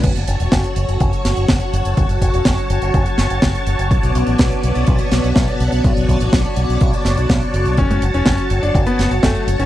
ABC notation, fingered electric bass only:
X:1
M:4/4
L:1/16
Q:1/4=124
K:F#m
V:1 name="Fingered electric bass" clef=bass
F,,, F,,, F,,, E,,, F,,, z F,,, F,,, F,,, z F,,, F,,, F,,, z F,,, F,,, | F,,, F,,, F,,, E,,, F,,, z F,,, F,,, F,,, z F,,, F,,, F,,, z F,,, F,,, | B,,, B,,, B,,, A,,, B,,, z B,,, B,,, B,,, z B,,, B,,, B,,, z B,,, B,,, | B,,, B,,, B,,, A,,, B,,, z B,,, B,,, B,,, z F,,, B,,, B,,, z F,,, B,,, |
F,,, F,,, F,,, E,,, F,,, z F,,, F,,, F,,, z F,,, F,,, F,,, z F,,, F,,, |]